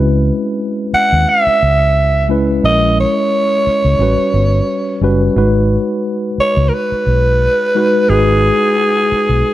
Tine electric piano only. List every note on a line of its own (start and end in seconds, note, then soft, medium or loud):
0.00 0.82 G#3 medium
0.00 0.83 C#4 medium
0.00 0.83 E4 medium
0.00 0.84 B4 medium
2.29 2.53 G#3 medium
2.29 2.53 C#4 medium
2.29 2.54 E4 medium
2.29 2.54 B4 medium
2.63 3.56 G#3 medium
2.63 3.56 C#4 medium
2.63 3.57 A#4 medium
3.99 4.83 G3 medium
3.99 4.83 C#4 medium
3.99 4.84 F#4 medium
3.99 4.84 B4 medium
5.02 5.26 G3 medium
5.02 5.26 C#4 medium
5.02 5.27 F#4 medium
5.02 5.27 B4 loud
5.36 6.29 G#3 medium
5.36 6.29 D#4 medium
5.36 6.29 F#4 medium
5.36 6.30 B4 medium
7.75 7.99 G#3 medium
7.75 7.99 D#4 medium
7.75 8.00 F#4 medium
7.75 8.00 B4 medium
8.09 9.01 G#3 medium
8.09 9.02 D#4 medium
8.09 9.03 F#4 medium
8.09 9.03 B4 medium